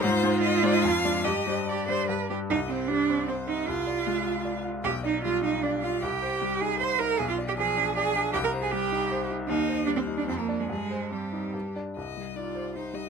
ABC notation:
X:1
M:3/4
L:1/16
Q:1/4=153
K:Cm
V:1 name="Violin"
c4 e2 d e f4 | e4 d6 z2 | e2 c2 d4 c2 e2 | f8- f2 z2 |
g2 e2 f2 e2 d2 f2 | g6 a2 c'2 b2 | ^g f2 =g ^g4 g4 | g b2 a g6 z2 |
e4 d c2 d c B2 A | A4 G6 z2 | e4 d4 c2 e2 |]
V:2 name="Cello"
F12 | G4 G2 c2 =B2 G2 | E2 C2 D4 C2 E2 | F8- F2 z2 |
G2 E2 F2 E2 D2 F2 | G6 A2 c2 B2 | ^G F2 =G ^G4 G4 | G B2 A G6 z2 |
E4 D C2 D C B,2 A, | A,4 G,6 z2 | z4 F4 E4 |]
V:3 name="Grand piano"
A,,2 [A,Ec]4 [A,Ec]2 F,,2 [A,Dd]2 | G,,2 [G,Dc]4 [G,Dc]2 G,,2 [G,D=B]2 | C,,2 c2 G,2 C2 c2 C2 | C,,2 d2 A,2 F2 d2 F2 |
=B,,,2 d2 G,2 F2 d2 F2 | C,,2 c2 G,2 E2 c2 E2 | =B,,,2 d2 F,2 D2 d2 D2 | C,,2 c2 G,2 E2 c2 E2 |
E,,2 c2 G,2 E2 F,,2 [Dd]2 | G,,2 c2 C2 E2 G,,2 [Dd]2 | C,,2 G,2 E2 c2 E2 G,2 |]